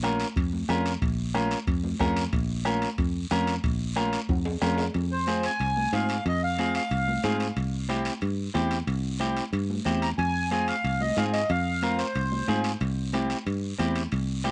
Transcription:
Already playing: A#1
0.03 C#4 F4 A#4, bombo rim, high conga, high timbale, short guiro
0.20 high timbale, short guiro
0.36 F2, bombo low, high timbale, long guiro
0.53 high conga
0.69 F2 C#4 F4 A#4, bombo rim, high conga, high timbale, low timbale, short guiro
0.86 high timbale, short guiro
1.02 A#1, bombo low, high timbale, long guiro
1.35 C#4 F4 A#4, bombo rim, high conga, high timbale, short guiro
1.51 high timbale, short guiro
1.67 F2, bombo low, high timbale, long guiro
1.83 high conga
2.00 F2 C#4 F4 A#4, bombo low, bombo rim, high conga, high timbale, low timbale, short guiro
2.16 high timbale, short guiro
2.33 A#1, bombo low, high timbale, long guiro
2.65 C#4 F4 A#4, bombo rim, high conga, high timbale, short guiro
2.82 high timbale, short guiro
2.98 F2, bombo low, high timbale, long guiro
3.31 F2 C#4 F4 A#4, bombo rim, high conga, high timbale, short guiro
3.47 high timbale, short guiro
3.64 A#1, bombo low, high timbale, long guiro
3.96 C#4 F4 A#4, bombo rim, high conga, high timbale, short guiro
4.13 high timbale, short guiro
4.29 F2, bombo low, high timbale, long guiro
4.45 low timbale
4.62 F2 C#4 F4 A#4, bombo rim, high conga, low timbale, short guiro
4.78 low timbale, short guiro
4.94 F2, high timbale, long guiro
5.12 C5
5.27 C4 F4 G#4, high conga, high timbale, short guiro
5.43 G#5, high timbale, short guiro
5.60 C2, high timbale, long guiro
5.76 high conga
5.93 G#2 C4 F4 G#4 F5, high conga, high timbale, short guiro
6.09 high timbale, short guiro
6.26 F2 D#5, high timbale, long guiro
6.44 F5
6.58 C4 F4 G#4, high conga, high timbale, short guiro
6.75 F5, high timbale, short guiro
6.91 C2, high timbale, long guiro
7.08 high conga
7.24 G#2 C4 F4 G#4, high conga, high timbale, low timbale, short guiro
7.40 high timbale, short guiro
7.56 C2, high timbale, long guiro
7.89 C4 E4 G4, high conga, high timbale, short guiro
8.05 high timbale, short guiro
8.21 G2, high timbale, long guiro
8.54 E2 C4 E4 G4, high conga, high timbale, short guiro
8.71 high timbale, short guiro
8.87 C2, high timbale, long guiro
9.20 C4 E4 G4, high conga, high timbale, short guiro
9.36 high timbale, short guiro
9.53 G2, high timbale, long guiro
9.70 high conga
9.85 E2 C4 E4 G4, high conga, high timbale, short guiro
10.02 A#5, high timbale, short guiro
10.18 F2 G#5, high timbale, long guiro
10.51 C4 F4 G#4 G#5, high conga, high timbale, short guiro
10.68 F5, high timbale, short guiro
10.84 C2, high timbale, long guiro
11.00 D#5, high conga
11.17 G#2 C4 F4 G#4 F5, high conga, high timbale, short guiro
11.33 D#5, high timbale, short guiro
11.49 F2 F5, high timbale, long guiro
11.82 C4 F4 A#4, high conga, high timbale, short guiro
11.99 C5, high timbale, short guiro
12.15 C2, high timbale, long guiro
12.32 high conga
12.48 G#2 C4 F4 G#4, high conga, high timbale, short guiro
12.64 high timbale, short guiro
12.81 C2, high timbale, long guiro
13.13 C4 E4 G4, high conga, high timbale, short guiro
13.30 high timbale, short guiro
13.46 G2, high timbale, long guiro
13.78 E2 C4 E4 G4, high conga, high timbale, short guiro
13.95 high timbale, short guiro
14.12 C2, high timbale, long guiro
14.44 C4 E4 G4, high conga, high timbale, short guiro

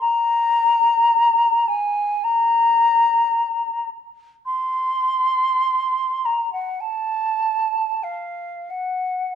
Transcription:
0.01 A#5
1.68 G#5
2.24 A#5
4.46 C6
6.25 A#5
6.53 F#5
6.80 A5
8.03 F5
8.70 F#5

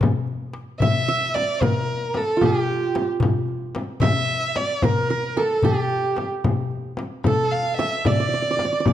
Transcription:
0.01 darbuka dum, frame drum
0.27 darbuka ka
0.53 darbuka tek
0.80 E5, darbuka dum, frame drum
1.08 E5
1.34 D5, darbuka tek, frame drum
1.61 A#4, darbuka dum, frame drum
1.88 darbuka ka
2.14 A4, darbuka tek, frame drum
2.37 F4
2.41 G4, frame drum, darbuka dum
2.95 darbuka tek, frame drum
3.20 darbuka dum, frame drum
3.48 darbuka ka
3.75 darbuka tek, frame drum
4.00 E5, darbuka dum, frame drum
4.56 D5, darbuka tek, frame drum
4.82 A#4, frame drum, darbuka dum
5.10 A#4
5.37 A4, darbuka tek, frame drum
5.62 G4, darbuka dum, frame drum
5.91 darbuka ka
6.17 darbuka tek, frame drum
6.44 darbuka dum, frame drum
6.71 darbuka ka
6.97 darbuka tek, frame drum
7.24 A4, frame drum, darbuka dum
7.51 F5
7.77 E5, darbuka tek, frame drum
8.05 D5, frame drum, darbuka dum
8.12 D5
8.20 D5
8.29 D5
8.34 D5, darbuka ka
8.42 D5
8.51 D5
8.57 D5, darbuka tek, frame drum
8.65 D5
8.73 D5
8.80 D5
8.86 D5, frame drum, darbuka dum

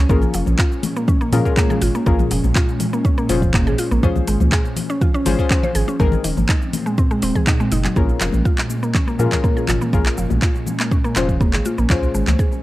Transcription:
Already playing: C#4
0.09 A#1 A#2 G#3 A#3 C#4 F4 G#4 A#4, kick, mid tom, high conga, shaker
0.22 muted conga, low conga, shaker
0.34 F1 F3, open hi-hat, shaker
0.46 A#1, mid tom, muted conga, high conga, shaker
0.59 F4, kick, clap, shaker
0.72 shaker
0.83 open hi-hat, muted conga, high conga, low conga, shaker
0.96 A#3, shaker
1.07 C#4, kick, mid tom, muted conga, high conga, shaker
1.21 A#3, shaker
1.32 A#2 F3 C#4 F4 G#4 A#4, open hi-hat, muted conga, low conga, shaker
1.45 C#4 F4 G#4 A#4, kick, shaker
1.57 A#3, kick, clap, shaker
1.70 G#4, muted conga, low conga, shaker
1.82 G#1 F4, open hi-hat, shaker
1.95 A#3, muted conga, shaker
2.06 A#1 A#3 C#4 F4 G#4 A#4, kick, mid tom, shaker
2.19 muted conga, low conga, shaker
2.31 F1 F3, open hi-hat, shaker
2.44 A#1, muted conga, high conga, shaker
2.55 F4, kick, clap, shaker
2.68 shaker
2.80 open hi-hat, muted conga, high conga, low conga, shaker
2.93 A#3, shaker
3.05 C#4, kick, muted conga, shaker
3.18 A#3, shaker
3.29 F1 F3 C#4 F4 G#4 C5, open hi-hat, muted conga, shaker
3.42 kick, mid tom, shaker
3.54 A#3, kick, clap, shaker
3.67 A#1 G#4, muted conga, shaker
3.78 F4, open hi-hat, shaker
3.91 A#1 A#3, muted conga, shaker
4.03 C#2 F3 C#4 F4 G#4 C5, kick, mid tom, high conga, shaker
4.15 muted conga, low conga, shaker
4.27 G#1 G#3, open hi-hat, shaker
4.40 C#2, mid tom, muted conga, high conga, shaker
4.52 G#4, kick, clap, shaker
4.65 shaker
4.76 open hi-hat, muted conga, high conga, low conga, shaker
4.90 C#4, shaker
5.01 F4, kick, mid tom, muted conga, high conga, shaker
5.14 C#4, shaker
5.25 G#1 G#3 C#4 F4 G#4 C5, open hi-hat, muted conga, low conga, shaker
5.39 C#4 F4 G#4 C5, kick, shaker
5.50 C#4, kick, clap, shaker
5.63 C5, muted conga, low conga, shaker
5.75 G#1 G#4, open hi-hat, shaker
5.88 C#4, muted conga, shaker
6.00 G#1 A#2 G#3 C4 D#4 G#4 A#4, kick, mid tom, high conga, shaker
6.12 muted conga, low conga, shaker
6.24 D#1 D#3, open hi-hat, shaker
6.37 G#1, mid tom, muted conga, high conga, shaker
6.49 D#4, kick, clap, shaker
6.62 shaker
6.73 open hi-hat, muted conga, high conga, low conga, shaker
6.86 G#3, shaker
6.98 C4, kick, muted conga, shaker
7.11 G#3, shaker
7.22 D#1 C4, open hi-hat, muted conga, shaker
7.35 G#4, kick, mid tom, shaker
7.47 D#4, kick, clap, shaker
7.60 G#3, muted conga, shaker
7.72 F#1 D#4, open hi-hat, high conga, shaker
7.85 F#3, clap, muted conga, shaker
7.96 A#1 A#2 G#3 A#3 C#4 F4 G#4 A#4, kick, mid tom, muted conga, shaker
8.09 shaker
8.21 F1 F3, clap, muted conga, shaker
8.33 A#1, mid tom, high conga, shaker
8.45 F4, kick, shaker
8.58 clap, muted conga, shaker
8.70 high conga, shaker
8.83 A#3, muted conga, shaker
8.94 C#4, kick, clap, mid tom, high conga, shaker
9.08 A#3, muted conga, shaker
9.19 A#2 F3 C#4 F4 G#4 A#4, shaker
9.32 C#4 F4 G#4 A#4, kick, clap, muted conga, low conga, shaker
9.44 A#3, kick, shaker
9.57 G#4, shaker
9.68 G#1 F4, clap, muted conga, low conga, shaker
9.81 A#3, low conga, shaker
9.93 A#1 A#3 C#4 F4 G#4 A#4, kick, mid tom, muted conga, shaker
10.06 clap, shaker
10.18 F1 F3, muted conga, shaker
10.30 A#1, high conga, low conga, shaker
10.42 F4, kick, clap, shaker
10.54 muted conga, shaker
10.66 high conga, low conga, shaker
10.80 A#3, clap, muted conga, shaker
10.91 C#4, kick, shaker
11.04 A#3, muted conga, shaker
11.16 F1 F3 C#4 F4 G#4 C5, clap, shaker
11.29 kick, mid tom, muted conga, shaker
11.41 A#3, kick, shaker
11.53 A#1 G#4, clap, shaker
11.65 F4, muted conga, high conga, shaker
11.78 A#1 A#3, shaker
11.90 C#2 F3 C#4 F4 G#4 C5, kick, clap, mid tom, shaker
12.03 shaker
12.14 G#1 G#3, muted conga, shaker
12.27 C#2, clap, mid tom, high conga, shaker
12.39 G#4, kick, shaker
12.52 muted conga, shaker

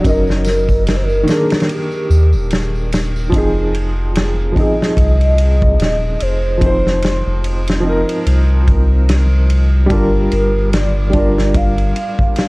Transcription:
0.00 F#3 C#4
0.05 F#1 D#4 A#4, kick, ride, tambourine
0.09 D#5
0.27 snare, tambourine
0.44 snare, ride, tambourine
0.68 kick, tambourine, triangle
0.86 A#4, snare, ride, tambourine
0.96 C5
1.04 A#4
1.09 tambourine
1.23 D#3 A#3
1.27 D4 G#4, snare, ride, tambourine
1.32 A#4
1.50 snare, ride, tambourine
1.60 snare, ride
1.69 G4, ride, tambourine
1.92 tambourine
2.10 D#2, tambourine
2.33 D#1, tambourine
2.51 snare, ride, tambourine
2.75 tambourine
2.92 snare, ride, tambourine
3.16 tambourine
3.30 F1 F3 C4, kick
3.34 D#4, ride
3.38 G#4
3.74 ride
4.15 snare, ride
4.52 F3 C4
4.56 D#4 D#5, kick, ride
4.61 G#4
4.82 snare
4.97 C2, kick, ride
5.21 ride
5.38 ride
5.62 kick
5.80 D#1, snare, ride
6.20 F1 C5, ride
6.58 F3 C4, kick, ride
6.63 D#4 C5
6.87 snare
7.02 snare, ride
7.26 F1
7.44 ride
7.67 snare, ride
7.80 F3 C4
7.86 D#4 A#4
8.09 ride
8.26 C2, ride
8.68 kick, ride
9.09 snare, ride
9.50 ride
9.86 G3 D4, ride
9.90 G1 F4 A#4, kick
9.95 A#4
10.31 G1, ride
10.73 D5, snare, ride
11.10 G3 D4, kick, ride
11.15 F4 A#4
11.38 snare
11.54 F5, kick, ride
11.78 ride
11.96 ride
12.19 kick
12.36 F5, snare, ride

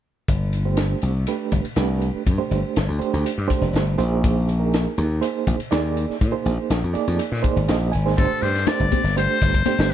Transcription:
0.28 G1, kick, hi-hat pedal, ride
0.53 hi-hat pedal, ride
0.65 A3 D4 G4 C5
0.77 snare, hi-hat pedal, ride
1.02 C2, hi-hat pedal, ride
1.27 A3 D4 G4 B4, hi-hat pedal, ride
1.52 G1, kick, hi-hat pedal, ride
1.65 muted slap bass stroke, ride
1.76 C2 A3 D4 G4 B4, snare, hi-hat pedal, ride
2.01 hi-hat pedal, ride
2.27 G2, kick, hi-hat pedal, ride
2.38 A3 D4 G4 C5
2.51 G1, hi-hat pedal, ride
2.76 G1, snare, hi-hat pedal, ride
2.88 D2
2.99 A3 D4 G4 C5, muted slap bass stroke, hi-hat pedal, ride
3.13 D2, ride
3.26 hi-hat pedal, ride
3.38 G2
3.48 A3 D4 G4 C5, muted slap bass stroke, kick, hi-hat pedal, ride
3.61 F1, ride
3.73 G1, snare, hi-hat pedal, ride
3.98 A#1 A#3 D#4 G#4 C5, hi-hat pedal, ride
4.24 kick, hi-hat pedal, ride
4.49 hi-hat pedal, ride
4.60 A#3 D#4 G#4 A#4
4.74 snare, hi-hat pedal, ride
4.98 D#2, hi-hat pedal, ride
5.21 A#3 D#4 G#4 C5, hi-hat pedal, ride
5.47 A#1, kick, hi-hat pedal, ride
5.60 ride
5.71 D#2 A#3 D#4 G#4 D5, snare, hi-hat pedal, ride
5.97 hi-hat pedal, ride
6.10 muted slap bass stroke, snare
6.21 A#2, kick, hi-hat pedal, ride
6.32 A#3 D#4 G#4 C5
6.45 A#1, hi-hat pedal, ride
6.70 A#1, snare, hi-hat pedal, ride
6.84 F2
6.93 A#3 D#4 G#4 D5, muted slap bass stroke, hi-hat pedal, ride
7.07 F2, ride
7.19 hi-hat pedal, ride
7.32 A#2, snare
7.42 A#3 D#4 G#4 C5 D5, muted slap bass stroke, kick, hi-hat pedal, ride
7.56 G#1, ride
7.68 A#1 D#5, snare, hi-hat pedal, ride
7.92 G#1 G#5, hi-hat pedal, ride
8.05 A#3 D#4 G#4 C5, snare
8.17 G1 A3 D4 G4 A4 C5, kick, crash, muted conga
8.31 muted slap bass stroke
8.42 G2 C5, snare, hi-hat pedal, ride
8.56 snare, ride
8.67 A3 D4 G4 C5 D5, muted slap bass stroke, snare, hi-hat pedal, ride, high conga
8.80 G1, kick
8.91 kick, hi-hat pedal, ride, muted conga, high conga
9.04 G1, snare, ride
9.16 A3 D4 G4 C5, hi-hat pedal, ride, muted conga
9.42 G1, kick, snare, hi-hat pedal, ride, muted conga
9.54 kick, ride
9.66 A3 D4 G4 C5, muted slap bass stroke, hi-hat pedal, ride, high conga
9.78 G1, snare

